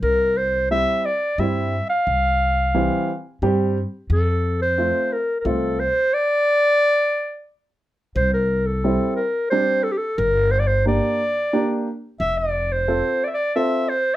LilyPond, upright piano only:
\new Staff \with { instrumentName = "Upright piano" } { \time 3/4 \key c \mixolydian \tempo 4 = 89 r4 <g c' e'>8 r8 <g c' e'>8 r8 | r4 <e g c'>8 r8 <g c' g'>8 r8 | r4 <a c' f'>8 r8 <a c' f'>8 r8 | r2. |
r4 <g c' e'>8 r8 <g c' d'>8 r8 | r4 <bes d' g'>8 r8 <bes d' g'>8 r8 | r4 <c' f' a'>8 r8 <c' f' a'>8 r8 | }